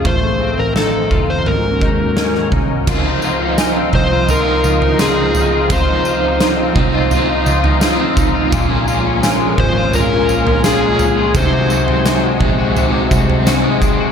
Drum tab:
CC |----------------|x---------------|----------------|----------------|
TB |----------------|x-x-x---x-x-x-x-|x-x-x---x-x-x-x-|x-x-x---x-x-x-x-|
SD |----o-------o---|----o-------o---|----o-------o---|----o-------o---|
FT |o-----o-o-----o-|o-----o-o--o--o-|o-----o-o--o--o-|o-----o-o--o--o-|
BD |o-----o---o---o-|o-----o---------|o-----o-------o-|o-----o---------|

CC |----------------|
TB |x-x-x---x-x-x-x-|
SD |----o-------o---|
FT |o--o--o-o--o----|
BD |o-----o---o---o-|